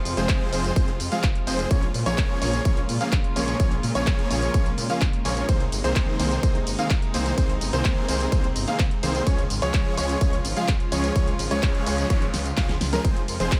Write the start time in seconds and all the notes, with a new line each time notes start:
Already playing: C3 F3 G#3 F4
0.05 F2, open hi-hat, tambourine
0.17 F1 F3 G#3 C4 G#4 C5, closed hi-hat, tambourine
0.29 F1, kick, clap, closed hi-hat, tambourine
0.53 F1 F3 G#3 C4 G#4 C5, open hi-hat, tambourine
0.64 closed hi-hat, tambourine
0.76 F1 F3 C4 G#4 C5, kick, closed hi-hat, tambourine
0.88 closed hi-hat
1.00 F2, open hi-hat, tambourine
1.12 F3 G#3 C4 G#4 F5, closed hi-hat, tambourine
1.23 F1, kick, clap, closed hi-hat, tambourine
1.35 closed hi-hat
1.47 F1 F3 G#3 C4 G#4 C5, open hi-hat, tambourine
1.59 closed hi-hat, tambourine
1.71 A#1 C#3 F3 G#3 A#3 C#4 F4 C#5, kick, closed hi-hat, tambourine
1.83 closed hi-hat
1.94 A#2, open hi-hat, tambourine
2.06 A#1 F3 A#3 C#4 G#4 C#5, closed hi-hat, tambourine
2.18 A#1, kick, clap, closed hi-hat, tambourine
2.42 A#1 F3 A#3 C#4 G#4 C#5, open hi-hat, tambourine
2.53 closed hi-hat, tambourine
2.65 A#1 F3 A#3 C#4 G#4 C#5, kick, closed hi-hat, tambourine
2.77 closed hi-hat
2.89 A#2, open hi-hat, tambourine
3.01 F3 A#3 C#4 G#4 F5, closed hi-hat, tambourine
3.12 A#1, kick, clap, closed hi-hat, tambourine
3.24 closed hi-hat
3.36 A#1 F3 A#3 C#4 G#4 C#5, open hi-hat, tambourine
3.48 closed hi-hat, tambourine
3.60 A#1 F3 A#3 C#4 G#4 C#5, kick, closed hi-hat, tambourine
3.72 closed hi-hat
3.83 A#2, open hi-hat, tambourine
3.95 A#1 F3 A#3 C#4 G#4 C#5, closed hi-hat, tambourine
4.07 A#1, kick, clap, closed hi-hat, tambourine
4.19 closed hi-hat
4.30 A#1 F3 A#3 C#4 G#4 C#5, open hi-hat, tambourine
4.42 closed hi-hat, tambourine
4.54 A#1 F3 A#3 C#4 G#4 C#5, kick, closed hi-hat, tambourine
4.66 closed hi-hat
4.78 A#2, open hi-hat, tambourine
4.90 F3 A#3 C#4 G#4 F5, closed hi-hat, tambourine
5.01 A#1, kick, clap, closed hi-hat, tambourine
5.13 closed hi-hat
5.25 A#1 F3 A#3 C#4 G#4 C#5, open hi-hat, tambourine
5.37 closed hi-hat, tambourine
5.49 C2 C3 D#3 A#3 C4 D#4 G#4 C5, kick, closed hi-hat, ride, tambourine
5.60 closed hi-hat
5.72 G1, open hi-hat, ride, tambourine
5.84 C2 D#3 A#3 C4 G#4 C5, closed hi-hat, tambourine
5.96 C2, kick, clap, closed hi-hat, ride, tambourine
6.20 C2 D#3 A#3 C4 G#4 C5, open hi-hat, ride, tambourine
6.31 closed hi-hat, tambourine
6.43 C2 D#3 A#3 C4 G#4 C5, kick, closed hi-hat, ride, tambourine
6.55 closed hi-hat
6.67 G1, open hi-hat, ride, tambourine
6.79 D#3 A#3 C4 G#4 F5, closed hi-hat, tambourine
6.90 C2, kick, clap, closed hi-hat, ride, tambourine
7.02 closed hi-hat
7.14 C2 D#3 A#3 C4 G#4 C5, open hi-hat, ride, tambourine
7.26 closed hi-hat, tambourine
7.38 C2 D#3 A#3 C4 G#4 C5, kick, closed hi-hat, ride, tambourine
7.49 closed hi-hat
7.61 G1, open hi-hat, ride, tambourine
7.73 C2 D#3 A#3 C4 G#4 C5, closed hi-hat, tambourine
7.85 C2, kick, clap, closed hi-hat, ride, tambourine
8.08 C2 D#3 A#3 C4 G#4 C5, open hi-hat, ride, tambourine
8.20 closed hi-hat, tambourine
8.32 C2 D#3 A#3 C4 G#4 C5, kick, closed hi-hat, ride, tambourine
8.44 closed hi-hat
8.56 G1, open hi-hat, ride, tambourine
8.68 D#3 A#3 C4 G#4 F5, closed hi-hat, tambourine
8.79 C2, kick, clap, closed hi-hat, ride, tambourine
8.91 closed hi-hat
9.03 C2 D#3 A#3 C4 G#4 C5, open hi-hat, ride, tambourine
9.15 closed hi-hat, tambourine
9.27 C#2 C#3 F3 G#3 C#4 F4 G#4 C#5, kick, closed hi-hat, ride, tambourine
9.38 closed hi-hat
9.50 G#1, open hi-hat, ride, tambourine
9.62 C#2 F3 G#3 C#4 G#4 C#5, closed hi-hat, tambourine
9.74 C#2, kick, clap, closed hi-hat, ride, tambourine
9.97 C#2 F3 G#3 C#4 G#4 C#5, open hi-hat, ride, tambourine
10.09 closed hi-hat, tambourine
10.21 C#2 F3 G#3 C#4 C#5, kick, closed hi-hat, ride, tambourine
10.33 closed hi-hat
10.45 G#1, open hi-hat, ride, tambourine
10.56 F3 G#3 C#4 G#4 F5, closed hi-hat, tambourine
10.68 C#2, kick, clap, closed hi-hat, ride, tambourine
10.80 closed hi-hat
10.92 C#2 F3 G#3 C#4 G#4 C#5, open hi-hat, ride, tambourine
11.04 closed hi-hat, tambourine
11.16 C#2 F3 G#3 C#4 G#4 C#5, kick, closed hi-hat, ride, tambourine, noise sweep
11.27 closed hi-hat
11.39 G#1, open hi-hat, ride, tambourine
11.51 C#2 F3 G#3 C#4 G#4 C#5, closed hi-hat, tambourine
11.63 C#2, kick, clap, closed hi-hat, ride, tambourine
11.75 closed hi-hat
11.86 C#2 F3 G#3 C#4 G#4 C#5, open hi-hat, ride, tambourine
11.98 closed hi-hat, tambourine
12.10 G#1 C#4 G#4 C#5, kick, closed hi-hat, ride, tambourine
12.22 closed hi-hat
12.34 C#2, snare, open hi-hat, ride, tambourine
12.45 closed hi-hat, tambourine
12.57 C#2 F3 G#3 C#4 G#4 F5, kick, snare, clap, closed hi-hat, ride, tambourine
12.69 snare, closed hi-hat
12.81 C#2, snare, open hi-hat, ride, tambourine
12.93 F3 G#3 C#4 G#4 A#4, snare, closed hi-hat, tambourine
13.05 F1 C3 F3 G#3 C4 F4 G#4 C5, kick, closed hi-hat, ride, tambourine
13.16 closed hi-hat
13.28 F2, open hi-hat, ride, tambourine
13.40 F1 F3 G#3 C4 G#4 C5, closed hi-hat, tambourine
13.52 F1, kick, clap, closed hi-hat, ride, tambourine